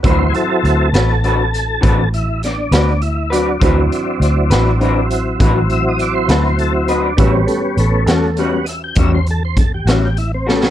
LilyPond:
<<
  \new Staff \with { instrumentName = "Upright piano" } { \time 12/8 \key d \major \tempo 4. = 67 <c' e' fis' b'>1. | <c' e' fis' c''>1. | <cis' fis' g' b'>1. | }
  \new Staff \with { instrumentName = "Tonewheel organ" } { \time 12/8 \key d \major << { c''8 <gis' a'>2. e'8 d'8 d'8 e'8 <fis d'>8~ | <fis d'>2~ <fis d'>8 r4 e''16 dis''16 d''16 c''16 a'16 c''16 a'16 e'16 dis'16 d'16 | e'16 c'16 a16 g16 a8 <gis a>8 r8 <dis'' e''>16 g''16 e''16 c''16 a'16 c''16 a'16 g'16 e'16 g'16 e'16 c'16 a8 | } \\ { <fis c' e'>4. r1 r8 | <fis c' e'>1. | <g b cis'>4. r8 <g b cis' fis'>8 r2. r8 | } >> }
  \new Staff \with { instrumentName = "Clean electric guitar" } { \time 12/8 \key d \major <d c' fis' b'>8 r4 <c' fis' b'>8 <d c' fis' b'>8 r8 <d c' fis' b'>8 r4 <c' fis' b'>8 r8 <c' fis' b'>8 | <d c' fis' b'>8 r4 <c' fis' b'>8 <d c' fis' b'>8 r8 <d c' fis' b'>8 r4 <c' fis' b'>8 r8 <c' fis' b'>8 | <a, g cis' fis'>8 r4 <g cis' fis'>8 <a, g cis' fis'>8 r8 <a, g cis' fis'>8 r4 <g cis' fis'>8 r8 <g cis' fis'>8 | }
  \new Staff \with { instrumentName = "Fingered electric bass" } { \clef bass \time 12/8 \key d \major d,8 r8 d,8 a,,4. a,,4. d,4. | d,8 r8 d,8 a,,4. a,,4. d,4. | a,,8 r8 a,,8 e,4. e,4. a,,4. | }
  \new DrumStaff \with { instrumentName = "Drums" } \drummode { \time 12/8 <hh bd>8 hh8 hh8 <hh sn>8 hh8 hh8 <hh bd>8 hh8 <hh sn>8 <hh sn>8 hh8 hh8 | <hh bd>8 hh8 hh8 <hh sn>8 hh8 hh8 <hh bd>8 hh8 hh8 <hh sn>8 hh8 hh8 | <hh bd>8 hh8 hh8 <hh sn>8 hh8 hh8 <hh bd>8 hh8 <hh bd>8 <hh sn>8 hh8 sn16 sn16 | }
>>